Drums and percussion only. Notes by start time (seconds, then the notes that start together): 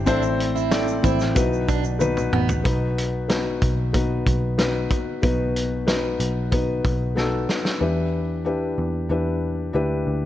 0.07 kick, closed hi-hat, shaker
0.23 shaker
0.40 closed hi-hat
0.57 shaker
0.71 snare, closed hi-hat, shaker
0.88 shaker
1.04 kick, closed hi-hat, shaker
1.19 snare, shaker
1.36 kick, closed hi-hat, shaker
1.53 shaker
1.69 kick, closed hi-hat, shaker
1.84 shaker
2.00 high tom, shaker
2.17 mid tom, shaker
2.33 mid tom
2.49 floor tom, shaker
2.65 kick, closed hi-hat
2.98 closed hi-hat
3.30 snare, closed hi-hat
3.62 kick, closed hi-hat
3.94 kick, closed hi-hat
4.27 kick, closed hi-hat
4.59 snare, closed hi-hat
4.91 kick, closed hi-hat
5.23 kick, closed hi-hat
5.56 closed hi-hat
5.88 snare, closed hi-hat
6.20 closed hi-hat
6.52 kick, closed hi-hat
6.85 kick, closed hi-hat
7.17 snare
7.49 snare
7.65 snare